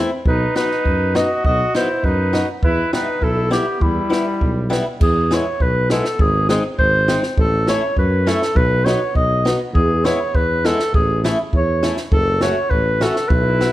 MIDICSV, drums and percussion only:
0, 0, Header, 1, 2, 480
1, 0, Start_track
1, 0, Key_signature, 1, "minor"
1, 0, Tempo, 592885
1, 206, Time_signature, 2, 2, 24, 8
1, 4050, Key_signature, 4, "major"
1, 11111, End_track
2, 0, Start_track
2, 0, Title_t, "Drums"
2, 207, Note_on_c, 9, 36, 61
2, 288, Note_off_c, 9, 36, 0
2, 453, Note_on_c, 9, 38, 68
2, 534, Note_off_c, 9, 38, 0
2, 575, Note_on_c, 9, 38, 18
2, 656, Note_off_c, 9, 38, 0
2, 692, Note_on_c, 9, 36, 44
2, 773, Note_off_c, 9, 36, 0
2, 932, Note_on_c, 9, 38, 57
2, 1012, Note_off_c, 9, 38, 0
2, 1171, Note_on_c, 9, 36, 59
2, 1251, Note_off_c, 9, 36, 0
2, 1416, Note_on_c, 9, 38, 69
2, 1497, Note_off_c, 9, 38, 0
2, 1649, Note_on_c, 9, 36, 42
2, 1730, Note_off_c, 9, 36, 0
2, 1892, Note_on_c, 9, 38, 72
2, 1973, Note_off_c, 9, 38, 0
2, 2127, Note_on_c, 9, 36, 66
2, 2208, Note_off_c, 9, 36, 0
2, 2373, Note_on_c, 9, 38, 77
2, 2454, Note_off_c, 9, 38, 0
2, 2605, Note_on_c, 9, 36, 42
2, 2686, Note_off_c, 9, 36, 0
2, 2849, Note_on_c, 9, 38, 64
2, 2930, Note_off_c, 9, 38, 0
2, 3087, Note_on_c, 9, 36, 70
2, 3168, Note_off_c, 9, 36, 0
2, 3337, Note_on_c, 9, 38, 66
2, 3418, Note_off_c, 9, 38, 0
2, 3573, Note_on_c, 9, 36, 52
2, 3653, Note_off_c, 9, 36, 0
2, 3819, Note_on_c, 9, 38, 70
2, 3900, Note_off_c, 9, 38, 0
2, 4054, Note_on_c, 9, 49, 58
2, 4056, Note_on_c, 9, 36, 75
2, 4135, Note_off_c, 9, 49, 0
2, 4137, Note_off_c, 9, 36, 0
2, 4298, Note_on_c, 9, 38, 63
2, 4379, Note_off_c, 9, 38, 0
2, 4536, Note_on_c, 9, 36, 47
2, 4617, Note_off_c, 9, 36, 0
2, 4776, Note_on_c, 9, 38, 75
2, 4857, Note_off_c, 9, 38, 0
2, 4895, Note_on_c, 9, 38, 55
2, 4976, Note_off_c, 9, 38, 0
2, 5014, Note_on_c, 9, 36, 70
2, 5095, Note_off_c, 9, 36, 0
2, 5256, Note_on_c, 9, 38, 70
2, 5337, Note_off_c, 9, 38, 0
2, 5494, Note_on_c, 9, 36, 49
2, 5575, Note_off_c, 9, 36, 0
2, 5733, Note_on_c, 9, 38, 70
2, 5814, Note_off_c, 9, 38, 0
2, 5852, Note_on_c, 9, 38, 50
2, 5933, Note_off_c, 9, 38, 0
2, 5971, Note_on_c, 9, 36, 71
2, 6052, Note_off_c, 9, 36, 0
2, 6213, Note_on_c, 9, 38, 70
2, 6294, Note_off_c, 9, 38, 0
2, 6449, Note_on_c, 9, 36, 45
2, 6530, Note_off_c, 9, 36, 0
2, 6697, Note_on_c, 9, 38, 69
2, 6778, Note_off_c, 9, 38, 0
2, 6818, Note_on_c, 9, 38, 54
2, 6899, Note_off_c, 9, 38, 0
2, 6931, Note_on_c, 9, 36, 73
2, 7012, Note_off_c, 9, 36, 0
2, 7179, Note_on_c, 9, 38, 68
2, 7260, Note_off_c, 9, 38, 0
2, 7411, Note_on_c, 9, 36, 50
2, 7492, Note_off_c, 9, 36, 0
2, 7658, Note_on_c, 9, 38, 70
2, 7739, Note_off_c, 9, 38, 0
2, 7895, Note_on_c, 9, 36, 61
2, 7976, Note_off_c, 9, 36, 0
2, 8138, Note_on_c, 9, 38, 71
2, 8219, Note_off_c, 9, 38, 0
2, 8376, Note_on_c, 9, 36, 50
2, 8457, Note_off_c, 9, 36, 0
2, 8620, Note_on_c, 9, 38, 68
2, 8701, Note_off_c, 9, 38, 0
2, 8738, Note_on_c, 9, 38, 55
2, 8819, Note_off_c, 9, 38, 0
2, 8859, Note_on_c, 9, 36, 71
2, 8940, Note_off_c, 9, 36, 0
2, 9104, Note_on_c, 9, 38, 74
2, 9185, Note_off_c, 9, 38, 0
2, 9335, Note_on_c, 9, 36, 52
2, 9416, Note_off_c, 9, 36, 0
2, 9576, Note_on_c, 9, 38, 66
2, 9657, Note_off_c, 9, 38, 0
2, 9689, Note_on_c, 9, 38, 50
2, 9770, Note_off_c, 9, 38, 0
2, 9810, Note_on_c, 9, 36, 72
2, 9891, Note_off_c, 9, 36, 0
2, 10048, Note_on_c, 9, 38, 80
2, 10129, Note_off_c, 9, 38, 0
2, 10289, Note_on_c, 9, 36, 45
2, 10370, Note_off_c, 9, 36, 0
2, 10534, Note_on_c, 9, 38, 73
2, 10615, Note_off_c, 9, 38, 0
2, 10654, Note_on_c, 9, 38, 45
2, 10735, Note_off_c, 9, 38, 0
2, 10770, Note_on_c, 9, 36, 70
2, 10851, Note_off_c, 9, 36, 0
2, 11017, Note_on_c, 9, 38, 71
2, 11098, Note_off_c, 9, 38, 0
2, 11111, End_track
0, 0, End_of_file